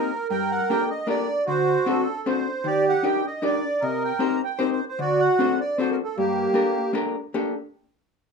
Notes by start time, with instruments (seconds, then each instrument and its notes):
Already playing: hollow-body jazz guitar A#3 C4 D#4 G4 A#4, accordion A#4
0.29 hollow-body jazz guitar G2, accordion A#4 G5
0.51 accordion F#5
0.69 hollow-body jazz guitar A#3 D4 G4 A4 A#4, accordion G5
0.90 accordion D#5
1.07 hollow-body jazz guitar A#3 D4 G4 A4 A#4, accordion D5
1.46 hollow-body jazz guitar D3, accordion F#4 C5
1.86 hollow-body jazz guitar C4 D4 F#4 A4 C5, accordion A4
2.26 hollow-body jazz guitar C4 D4 F#4 A4 C5, accordion C5
2.64 hollow-body jazz guitar D#3, accordion G4 D5
2.89 accordion F#5
3.03 hollow-body jazz guitar D4 D#4 G4 A#4 D5, accordion G5
3.27 accordion D#5
3.42 hollow-body jazz guitar D4 D#4 G4 A#4 D5, accordion D5
3.81 hollow-body jazz guitar C3, accordion A#4 D#5
4.05 accordion G5
4.19 hollow-body jazz guitar C4 D#4 G4 A#4 C5, accordion A#5
4.44 accordion G5
4.59 hollow-body jazz guitar C4 D#4 G4 A#4 C5, accordion C5
4.72 accordion C5
4.89 accordion C5
4.99 hollow-body jazz guitar D3, accordion F#4 D5
5.20 accordion F#5
5.39 hollow-body jazz guitar C4 D4 F#4 A4 C5
5.61 accordion D5
5.78 hollow-body jazz guitar C4 D4 F#4 A4 C5, accordion C5
5.91 accordion A#4
6.03 accordion A4
6.17 hollow-body jazz guitar G2, accordion A#3 G4
6.54 hollow-body jazz guitar A#3 D4 G4 A4 A#4
6.93 hollow-body jazz guitar A#3 D4 G4 A4 A#4
7.34 hollow-body jazz guitar A#3 D4 G4 A4